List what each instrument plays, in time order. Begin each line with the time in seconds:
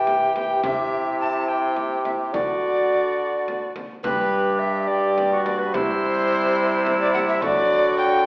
Already playing: bassoon E3, trombone G4, cor anglais G4, recorder G5
0.07 frame drum
0.36 recorder G5, frame drum
0.64 bassoon C3, trombone E4, cor anglais G4, recorder E5, frame drum
1.21 recorder A5
1.48 cor anglais G4, recorder G5
1.77 frame drum
2.04 recorder E5, frame drum
2.33 bassoon D3, trombone F#4, cor anglais F#4, recorder D5, frame drum
3.48 frame drum
3.76 frame drum
4.03 bassoon G2, trombone G3, cor anglais G4, recorder B4, frame drum
4.59 recorder E5
4.87 trombone G3, cor anglais G4, recorder D5
5.18 frame drum
5.33 cor anglais F#4
5.45 recorder D5, frame drum
5.59 recorder B4
5.73 bassoon C3, trombone G3, cor anglais E4, recorder C5, frame drum
6.86 frame drum
7.01 recorder D5
7.13 recorder F#5, frame drum
7.28 recorder E5
7.42 bassoon D3, trombone F#3, cor anglais F#4, recorder D5, frame drum
7.98 recorder G5